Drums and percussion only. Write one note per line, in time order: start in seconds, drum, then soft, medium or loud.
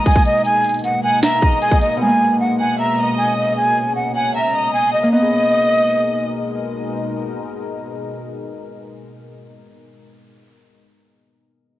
0.06 kick medium
0.06 closed hi-hat medium
0.12 kick medium
0.12 closed hi-hat medium
0.19 closed hi-hat medium
0.25 closed hi-hat medium
0.45 closed hi-hat medium
0.64 closed hi-hat medium
0.69 closed hi-hat medium
0.74 closed hi-hat medium
0.79 closed hi-hat medium
0.84 closed hi-hat medium
1.23 snare loud
1.23 closed hi-hat medium
1.42 kick medium
1.62 closed hi-hat medium
1.71 kick medium
1.81 closed hi-hat medium